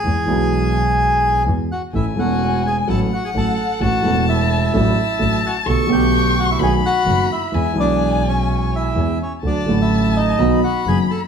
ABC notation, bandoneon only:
X:1
M:4/4
L:1/16
Q:1/4=127
K:Emix
V:1 name="Bandoneon"
[Gg]12 z2 [Ff]2 | [Ee]2 [Ff]4 [Gg]2 [Aa]2 [Ff] [Gg] [Aa]4 | [Ff]4 [Ee]8- [Ee]2 [Ff]2 | [Aa]2 [=G=g]4 [Ff] [Ee] [^G^g]2 [Ff]4 [Ee]2- |
[Ee]2 [Dd]4 [Cc]4 [Ee]4 [Cc]2 | [Dd]3 [Ee]3 [^D^d]4 [Ff]2 [Gg]2 [Aa]2 |]